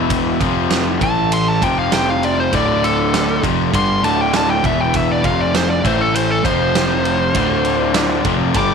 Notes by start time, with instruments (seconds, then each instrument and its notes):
Already playing: picked electric bass E1, overdriven electric guitar E2 B2 E3, tonewheel organ B3 E4 E5
0.10 kick, ride
0.40 picked electric bass F1, overdriven electric guitar F2 C3 F3, tonewheel organ C4 F4 F5, kick, ride
0.70 snare, ride
1.00 picked electric bass A1, overdriven electric guitar A2 E3 A3, tonewheel organ A3 E4 E5, lead electric guitar A5, kick, ride
1.32 lead electric guitar C6, ride
1.48 lead electric guitar A5
1.61 picked electric bass F1, overdriven electric guitar F2 C3 F3, tonewheel organ C4 F4 F5, lead electric guitar G5, kick, ride
1.79 lead electric guitar F5
1.92 lead electric guitar G5, snare, ride
2.10 lead electric guitar F5
2.23 lead electric guitar D5, ride
2.40 lead electric guitar C5
2.53 picked electric bass D1, overdriven electric guitar D2 A2 D3, tonewheel organ A3 F4 D5, lead electric guitar D5, kick, ride
2.84 lead electric guitar A4, ride
3.14 snare, ride
3.43 picked electric bass F1, overdriven electric guitar F2 C3 F3, kick, ride
3.73 picked electric bass G1, overdriven electric guitar G2 D3 G3, lead electric guitar C6, kick, ride
4.03 picked electric bass D1, overdriven electric guitar D2 A2 D3, lead electric guitar A5, ride
4.21 lead electric guitar G5
4.33 lead electric guitar A5, snare, ride
4.50 lead electric guitar G5
4.63 picked electric bass E1, overdriven electric guitar E2 B2 E3, tonewheel organ B3 E4 E5, lead electric guitar E5, kick, ride
4.81 lead electric guitar G5
4.94 lead electric guitar E5, kick, ride
5.11 lead electric guitar D5
5.24 picked electric bass F1, overdriven electric guitar F2 C3 F3, tonewheel organ C4 F4 F5, lead electric guitar F5, kick, ride
5.41 lead electric guitar D5
5.55 lead electric guitar C5, snare, ride
5.70 lead electric guitar D5
5.84 picked electric bass A1, overdriven electric guitar A2 E3 A3, tonewheel organ A3 E4 E5, lead electric guitar C5, kick, ride
6.01 lead electric guitar A4
6.15 lead electric guitar C5, ride
6.31 lead electric guitar A4
6.44 picked electric bass F1, overdriven electric guitar F2 C3 F3, tonewheel organ C4 F4 F5, lead electric guitar C5, kick, ride
6.75 snare, ride
7.05 ride
7.34 picked electric bass D1, overdriven electric guitar D2 A2 D3, tonewheel organ A3 F4 D5, kick, ride
7.65 ride
7.94 snare, ride
8.25 picked electric bass F1, overdriven electric guitar F2 C3 F3, kick, ride
8.54 picked electric bass G1, overdriven electric guitar G2 D3 G3, lead electric guitar D6, kick, ride